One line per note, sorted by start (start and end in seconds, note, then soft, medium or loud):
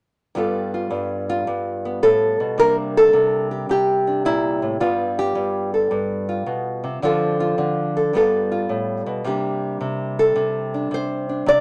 0.35 0.89 G2 medium
0.35 2.58 G3 soft
0.35 1.84 B3 soft
0.35 0.73 F4 soft
0.35 2.02 A4 soft
0.74 1.28 F4 soft
0.91 1.46 G2 medium
1.30 2.58 F4 medium
1.47 2.02 G2 medium
1.85 2.56 B3 soft
2.03 2.40 A2 medium
2.03 2.58 A4 medium
2.40 2.58 B2 medium
2.58 3.12 C3 medium
2.58 4.78 G3 soft
2.58 4.81 A#3 soft
2.58 4.07 D4 soft
2.58 2.75 A#4 loud
2.97 3.51 A4 medium
3.13 3.68 C3 medium
3.51 3.70 G4 soft
3.69 4.80 C3 medium
3.69 4.81 G4 medium
4.07 4.25 D4 soft
4.25 4.62 A#2 medium
4.25 4.80 E4 loud
4.62 4.80 A2 medium
4.80 5.34 G2 medium
4.80 7.01 G3 soft
4.80 7.01 B3 medium
4.80 5.73 F4 medium
5.19 5.73 G4 medium
5.35 5.90 G2 medium
5.74 7.00 A4 soft
5.91 6.46 G2 medium
6.29 7.00 F4 soft
6.46 6.84 B2 medium
6.84 7.02 C3 medium
7.02 7.57 D3 medium
7.02 8.14 F3 medium
7.02 8.12 C4 medium
7.02 7.39 F4 medium
7.02 7.96 A4 medium
7.40 8.11 F4 medium
7.58 8.11 D3 medium
7.97 8.12 A4 medium
8.13 8.69 G2 medium
8.13 9.25 G3 medium
8.13 9.23 B3 medium
8.13 8.50 F4 medium
8.13 9.24 A4 medium
8.52 9.23 F4 medium
8.69 9.06 A2 medium
9.06 9.24 B2 medium
9.24 9.80 C3 medium
9.24 11.61 G3 soft
9.24 11.61 A#3 soft
9.24 10.74 D4 soft
9.24 10.19 G4 soft
9.81 10.35 C3 medium
10.19 10.92 A4 medium
10.36 10.90 C3 medium
10.74 11.29 D4 soft
10.91 11.45 C3 medium
10.91 11.48 C5 loud
11.29 11.61 D4 soft
11.46 11.61 C3 medium
11.46 11.61 D5 loud